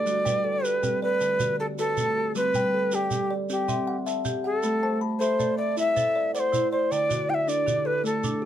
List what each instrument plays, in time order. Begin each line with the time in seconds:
Already playing: kalimba G4 A4, native american-style wooden flute D5
0.06 kalimba G3, marimba F#4, shekere
0.25 marimba G3 B4, kalimba G5, shekere
0.44 kalimba A4
0.63 kalimba G4, native american-style wooden flute B4, marimba D5, shekere
0.83 marimba G3 G4, kalimba C4, shekere
1.02 native american-style wooden flute B4, kalimba D5
1.20 kalimba D3, shekere
1.40 marimba D3, kalimba F#4, shekere
1.60 kalimba G4, native american-style wooden flute A4
1.78 kalimba F#4, native american-style wooden flute A4, marimba B4, shekere
1.97 marimba A3, shekere
2.18 kalimba G4
2.35 kalimba G3, marimba C4, native american-style wooden flute B4, shekere
2.54 marimba G3 B4, kalimba G5, shekere
2.74 kalimba A4
2.92 kalimba G4, native american-style wooden flute G4, marimba D5, shekere
3.11 marimba G3 G4, shekere
3.30 kalimba D5
3.50 kalimba C4, native american-style wooden flute G4, shekere
3.68 marimba C4, kalimba E5, shekere
3.87 kalimba F#5
4.07 kalimba E5, marimba A5, shekere
4.25 marimba G4, shekere
4.44 native american-style wooden flute A4, kalimba F#5
4.63 kalimba A3, marimba B5, shekere
4.82 marimba A3 C5, kalimba A5
5.01 kalimba B5
5.19 kalimba A4, native american-style wooden flute C5, marimba E5, shekere
5.39 marimba A3 A4, kalimba D5, shekere
5.58 native american-style wooden flute D5, kalimba E5
5.77 kalimba E4, native american-style wooden flute E5, shekere
5.96 marimba A4, kalimba C5, shekere
6.15 kalimba D5
6.33 kalimba C5, native american-style wooden flute D5, marimba F#5, shekere
6.40 native american-style wooden flute C5
6.52 marimba E4, shekere
6.72 native american-style wooden flute C5, kalimba D5
6.91 kalimba D3, native american-style wooden flute D5, marimba G5, shekere
7.09 marimba D3 F#4, kalimba D5, shekere
7.30 kalimba E4, native american-style wooden flute G5
7.34 native american-style wooden flute E5
7.47 kalimba D4, marimba A4, native american-style wooden flute D5, shekere
7.66 marimba D3 D4, kalimba G4, shekere
7.85 kalimba A4, native american-style wooden flute B4
8.04 kalimba A3, native american-style wooden flute A4, shekere
8.24 marimba D4, shekere
8.42 kalimba G4